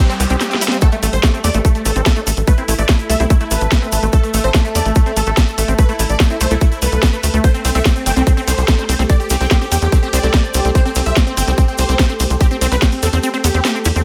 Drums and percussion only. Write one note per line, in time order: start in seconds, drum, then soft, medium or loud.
0.10 closed hi-hat soft
0.10 shaker soft
0.20 open hi-hat loud
0.20 shaker loud
0.30 closed hi-hat medium
0.30 shaker soft
0.40 snare medium
0.40 closed hi-hat medium
0.40 shaker soft
0.51 snare medium
0.51 closed hi-hat soft
0.51 shaker soft
0.61 open hi-hat loud
0.61 shaker loud
0.68 snare loud
0.68 closed hi-hat medium
0.68 shaker soft
0.81 kick loud
0.81 closed hi-hat medium
0.81 shaker medium
0.92 closed hi-hat soft
0.92 shaker soft
1.03 open hi-hat loud
1.03 shaker medium
1.13 closed hi-hat medium
1.13 shaker soft
1.23 kick loud
1.23 snare loud
1.23 closed hi-hat medium
1.23 shaker medium
1.34 closed hi-hat soft
1.34 shaker soft
1.44 open hi-hat loud
1.44 shaker medium
1.54 closed hi-hat medium
1.54 shaker soft
1.65 kick loud
1.65 closed hi-hat medium
1.65 shaker medium
1.75 closed hi-hat soft
1.75 shaker soft
1.85 open hi-hat loud
1.85 shaker medium
1.96 closed hi-hat medium
1.96 shaker soft
2.06 kick loud
2.06 snare loud
2.06 closed hi-hat medium
2.06 shaker soft
2.16 closed hi-hat soft
2.16 shaker soft
2.27 open hi-hat loud
2.27 shaker medium
2.37 closed hi-hat medium
2.37 shaker soft
2.48 kick loud
2.48 closed hi-hat medium
2.48 shaker medium
2.57 closed hi-hat soft
2.57 shaker soft
2.68 open hi-hat loud
2.68 shaker medium
2.78 closed hi-hat medium
2.78 shaker soft
2.89 kick loud
2.89 snare loud
2.89 closed hi-hat medium
2.89 shaker medium
2.99 closed hi-hat soft
2.99 shaker soft
3.10 open hi-hat loud
3.10 shaker medium
3.20 closed hi-hat medium
3.20 shaker soft
3.30 kick loud
3.30 closed hi-hat medium
3.30 shaker medium
3.40 closed hi-hat soft
3.40 shaker soft
3.51 open hi-hat loud
3.51 shaker loud
3.61 closed hi-hat medium
3.61 shaker soft
3.72 kick loud
3.72 snare loud
3.72 closed hi-hat medium
3.72 shaker medium
3.82 closed hi-hat soft
3.82 shaker soft
3.92 open hi-hat loud
3.92 shaker loud
4.03 closed hi-hat medium
4.03 shaker soft
4.13 kick loud
4.13 closed hi-hat medium
4.13 shaker medium
4.23 closed hi-hat soft
4.23 shaker soft
4.34 open hi-hat loud
4.34 shaker loud
4.44 closed hi-hat medium
4.44 shaker soft
4.54 kick loud
4.54 snare loud
4.54 closed hi-hat medium
4.54 shaker medium
4.65 closed hi-hat soft
4.65 shaker soft
4.75 open hi-hat loud
4.75 shaker medium
4.85 closed hi-hat medium
4.85 shaker soft
4.95 kick loud
4.95 closed hi-hat medium
4.95 shaker medium
5.06 closed hi-hat soft
5.06 shaker soft
5.16 open hi-hat loud
5.16 shaker medium
5.26 closed hi-hat medium
5.26 shaker soft
5.37 kick loud
5.37 snare loud
5.37 closed hi-hat medium
5.37 shaker medium
5.48 closed hi-hat soft
5.48 shaker soft
5.58 open hi-hat loud
5.58 shaker medium
5.68 closed hi-hat medium
5.68 shaker soft
5.79 kick loud
5.79 closed hi-hat medium
5.79 shaker medium
5.89 closed hi-hat soft
5.89 shaker soft
5.99 open hi-hat loud
5.99 shaker loud
6.09 closed hi-hat medium
6.09 shaker soft
6.20 kick loud
6.20 snare loud
6.20 closed hi-hat soft
6.20 shaker soft
6.30 closed hi-hat soft
6.30 shaker soft
6.41 open hi-hat loud
6.41 shaker medium
6.51 closed hi-hat medium
6.51 shaker soft
6.61 kick loud
6.61 closed hi-hat medium
6.61 shaker medium
6.72 closed hi-hat soft
6.72 shaker soft
6.82 open hi-hat loud
6.82 shaker medium
6.92 closed hi-hat medium
6.92 shaker soft
7.03 kick loud
7.03 snare loud
7.03 closed hi-hat medium
7.03 shaker medium
7.13 closed hi-hat soft
7.13 shaker soft
7.23 open hi-hat loud
7.23 shaker medium
7.34 closed hi-hat medium
7.34 shaker soft
7.44 kick loud
7.44 closed hi-hat medium
7.44 shaker soft
7.54 closed hi-hat soft
7.54 shaker soft
7.65 open hi-hat loud
7.65 ride medium
7.65 shaker loud
7.75 closed hi-hat medium
7.75 shaker soft
7.85 kick loud
7.85 snare loud
7.85 closed hi-hat medium
7.85 shaker medium
7.96 closed hi-hat soft
7.96 shaker soft
8.06 open hi-hat loud
8.06 ride medium
8.06 shaker loud
8.16 closed hi-hat medium
8.16 shaker soft
8.27 kick loud
8.27 closed hi-hat medium
8.27 shaker medium
8.37 closed hi-hat soft
8.37 shaker soft
8.48 open hi-hat loud
8.48 ride medium
8.48 shaker medium
8.58 closed hi-hat medium
8.58 shaker soft
8.68 kick loud
8.68 snare loud
8.68 closed hi-hat medium
8.68 shaker medium
8.79 closed hi-hat soft
8.79 shaker soft
8.89 open hi-hat loud
8.89 ride medium
8.89 shaker medium
8.99 closed hi-hat medium
8.99 shaker soft
9.10 kick loud
9.10 closed hi-hat medium
9.10 shaker soft
9.20 closed hi-hat soft
9.20 shaker soft
9.30 open hi-hat loud
9.30 ride medium
9.30 shaker loud
9.40 closed hi-hat medium
9.40 shaker soft
9.51 kick loud
9.51 snare loud
9.51 closed hi-hat medium
9.51 shaker soft
9.61 closed hi-hat soft
9.61 shaker soft
9.72 open hi-hat loud
9.72 ride medium
9.72 shaker medium
9.82 closed hi-hat medium
9.82 shaker soft
9.92 kick loud
9.92 closed hi-hat medium
9.92 shaker medium
10.03 closed hi-hat soft
10.03 shaker soft
10.13 open hi-hat loud
10.13 ride medium
10.13 shaker medium
10.23 closed hi-hat medium
10.23 shaker soft
10.34 kick loud
10.34 snare loud
10.34 closed hi-hat medium
10.34 shaker soft
10.44 closed hi-hat soft
10.44 shaker soft
10.54 open hi-hat loud
10.54 ride medium
10.54 shaker medium
10.65 closed hi-hat medium
10.65 shaker soft
10.75 kick loud
10.75 closed hi-hat medium
10.75 shaker soft
10.85 closed hi-hat soft
10.85 shaker soft
10.95 open hi-hat loud
10.95 ride medium
10.95 shaker medium
11.06 closed hi-hat medium
11.06 shaker soft
11.16 kick loud
11.16 snare loud
11.16 closed hi-hat medium
11.16 shaker medium
11.27 closed hi-hat soft
11.27 shaker soft
11.37 open hi-hat loud
11.37 ride medium
11.37 shaker medium
11.48 closed hi-hat medium
11.48 shaker soft
11.58 kick loud
11.58 closed hi-hat medium
11.58 shaker medium
11.68 closed hi-hat soft
11.68 shaker soft
11.78 open hi-hat loud
11.78 ride medium
11.78 shaker medium
11.89 closed hi-hat medium
11.89 shaker soft
11.99 kick loud
11.99 snare loud
11.99 closed hi-hat medium
11.99 shaker medium
12.09 closed hi-hat soft
12.09 shaker soft
12.20 open hi-hat loud
12.20 ride medium
12.20 shaker medium
12.30 closed hi-hat medium
12.30 shaker soft
12.41 kick loud
12.41 closed hi-hat medium
12.41 shaker soft
12.51 closed hi-hat soft
12.51 shaker soft
12.61 open hi-hat loud
12.61 ride medium
12.61 shaker loud
12.72 closed hi-hat medium
12.72 shaker soft
12.82 kick loud
12.82 snare loud
12.82 closed hi-hat medium
12.82 shaker medium
12.92 open hi-hat medium
12.92 shaker soft
13.02 open hi-hat loud
13.02 ride medium
13.02 shaker medium
13.13 closed hi-hat medium
13.13 shaker soft
13.23 closed hi-hat medium
13.23 shaker medium
13.34 closed hi-hat soft
13.34 shaker soft
13.44 open hi-hat loud
13.44 ride medium
13.44 shaker medium
13.54 closed hi-hat medium
13.54 shaker soft
13.65 snare loud
13.65 closed hi-hat medium
13.65 shaker medium
13.75 closed hi-hat soft
13.75 shaker soft
13.85 open hi-hat loud
13.85 ride medium
13.85 shaker medium
13.96 closed hi-hat medium
13.96 shaker soft